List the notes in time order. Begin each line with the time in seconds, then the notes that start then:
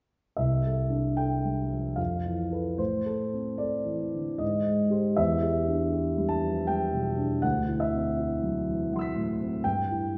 0.37 C2 E5
0.65 A4
0.90 D4
1.17 A4 G5
1.45 G3
1.70 F3
1.96 F2 F5
2.25 E3
2.51 A4 B4
2.78 A2 C5
3.06 A4
3.33 C4
3.58 A4 D5
3.85 E3
4.14 D3
4.38 G#2 D#5
4.66 G#3
4.90 G4 C5
5.17 E2 E5
5.43 G4
5.68 D4
5.91 G4
6.18 G3
6.29 A5
6.44 F3
6.67 G3 G5
6.93 B2
7.17 D4
7.42 D2 F#5
7.68 E4
7.80 E5
7.93 C4
8.19 E4
8.43 F#3
8.68 E3
8.93 F#3 F#5 C6
8.99 E6 B6
9.16 A2
9.40 C4
9.64 G2 G5
9.91 E4